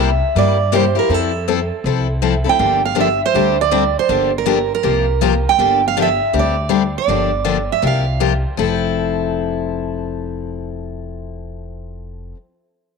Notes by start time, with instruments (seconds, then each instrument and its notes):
Already playing: upright bass C2, steel-string acoustic guitar E5
0.35 upright bass G2, steel-string acoustic guitar C3 G3 A#3 E4 G4 D5
0.72 steel-string acoustic guitar C3 G3 A#3 E4 G4 C5
0.95 steel-string acoustic guitar A#3 E4 G4 A#4
1.09 upright bass F2, steel-string acoustic guitar F3 C4 E4 A4
1.14 steel-string acoustic guitar A4
1.48 steel-string acoustic guitar F3 C4 E4 A4
1.84 upright bass C2, steel-string acoustic guitar F3 C4 E4 A4
2.22 steel-string acoustic guitar F3 C4 E4 A4
2.44 steel-string acoustic guitar C4 E4 A4
2.49 steel-string acoustic guitar G5
2.59 upright bass G1, steel-string acoustic guitar D3 F3 A#3 D4 G4
2.85 steel-string acoustic guitar F5
2.95 steel-string acoustic guitar D3 F3 A#3 D4 G4
3.01 steel-string acoustic guitar E5
3.26 steel-string acoustic guitar C5
3.34 upright bass D2, steel-string acoustic guitar D3 G3 C4 D4 G4
3.61 steel-string acoustic guitar D5
3.71 steel-string acoustic guitar D3 G3 C4 D4 G4
3.99 steel-string acoustic guitar C5
4.09 upright bass G1, steel-string acoustic guitar D3 F3 A#3 D4 G4
4.38 steel-string acoustic guitar A#4
4.46 steel-string acoustic guitar D3 F3 A#3 D4 G4
4.75 steel-string acoustic guitar A#4
4.83 upright bass C2, steel-string acoustic guitar C3 F3 A#3 F4 G4
5.21 steel-string acoustic guitar C3 F3 A#3 F4 G4
5.49 steel-string acoustic guitar G5
5.58 upright bass G1, steel-string acoustic guitar D3 F3 A#3 D4 G4
5.88 steel-string acoustic guitar F5
5.97 steel-string acoustic guitar D3 F3 A#3 D4 G4
6.02 steel-string acoustic guitar E5
6.33 upright bass D2, steel-string acoustic guitar D3 G3 C4 D4 G4
6.39 steel-string acoustic guitar D5
6.69 steel-string acoustic guitar D3 G3 C4 D4 G4
6.98 steel-string acoustic guitar D5
7.08 upright bass G1, steel-string acoustic guitar D3 F3 A#3 D4 G4
7.45 steel-string acoustic guitar D3 F3 A#3 D4 G4
7.72 steel-string acoustic guitar E5
7.82 upright bass C2, steel-string acoustic guitar C3 F3 A#3 F4 G4
7.87 steel-string acoustic guitar F5
8.20 steel-string acoustic guitar C3 F3 A#3 F4 G4
8.57 upright bass F1, steel-string acoustic guitar F3 C4 E4 A4